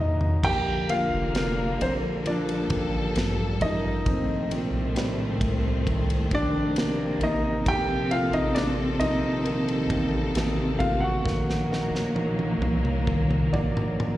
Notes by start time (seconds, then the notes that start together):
Already playing: A#2 D#3 F#3 A#3 F#4 A#4 D#5 F#5
0.01 D#4
0.21 floor tom
0.43 A#1 D3 F3 G3 A#3 G4 G5, kick, crash
0.89 A#3 D4 F4 G4 F5, ride
1.12 F1
1.35 A#3, snare, ride
1.81 A#1 A#3 C4 C5, ride
2.25 F3 A#3 A4 D5, ride
2.29 D4
2.49 ride
2.70 A1 A#3 G4, kick, ride
3.16 A1 G2 G3 A#3, snare, ride
3.61 A1 A#3 D#5, kick, ride
3.65 D#4
4.05 A#1 A2 C3 D#3 A3 C4, kick, ride
4.51 A#2 C4 G4, ride
4.73 A#1
4.96 G3, snare, ride
5.41 C2, kick, ride
5.87 D#3, kick, ride
6.10 ride
6.31 A#1 C4 D4 G4 D5, kick, ride
6.76 C3 A#3, snare, ride
7.21 A1 A#3 D#4 D#5, ride
7.65 A#1 C3 D#3 F3 A#3 C4 A4 G5, kick, ride
7.69 G4
8.11 A3 A#3 C4 F4 F5, ride
8.33 A1 D#4 D#5, ride
8.55 A#3 D4 D5, snare, ride
9.00 A#1 A#3 D#4 D#5, ride
9.45 D#3 G3 A#3, ride
9.69 ride
9.90 A1 A3 A#3 C4, kick, ride
10.35 A1 C3 A#3 C4, snare, ride
10.79 A1 A3 A#3 F4 F5, kick, ride
11.00 F#4 F#5
11.24 A#1 A#2 F#3 A#3, kick, snare
11.50 snare
11.70 A#3 D#4 F#4, snare
11.93 A#1, snare
12.16 A#3, high tom
12.39 high tom
12.61 C2 A#3, high tom
12.85 mid tom
13.07 D#3 A#3, kick, mid tom
13.31 mid tom
13.53 A#1 A#3 D#4 F#4 D5, mid tom
13.77 mid tom
13.98 A#3, mid tom